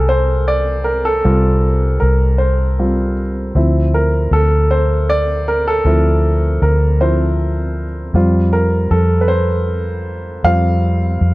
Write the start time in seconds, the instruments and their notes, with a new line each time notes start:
Already playing: fingered electric bass C2, grand piano G3 C4 F4 G#4 A4 A#4 C5
0.09 grand piano C5
0.48 grand piano D5
0.84 grand piano A#4
1.05 grand piano A4
1.24 fingered electric bass C2, grand piano G3 C4 F4
2.00 fingered electric bass C2, grand piano A#4
2.38 grand piano C5
2.79 grand piano G3 C4 F4
3.55 fingered electric bass D2, grand piano F3 C4 E4
3.94 grand piano A#4
4.31 fingered electric bass D2, grand piano A4
4.71 grand piano C5
5.10 grand piano D5
5.48 grand piano A#4
5.68 grand piano A4
5.85 fingered electric bass D2, grand piano F3 C4 E4
6.62 fingered electric bass D2, grand piano A#4
7.00 grand piano F3 C4 E4 C5
8.14 fingered electric bass F2, grand piano G3 C4 F4
8.53 grand piano A#4
8.91 fingered electric bass F2, grand piano A4
9.21 grand piano B4
9.28 grand piano C5
10.44 fingered electric bass F2, grand piano G3 C4 F4 F5
11.21 fingered electric bass F2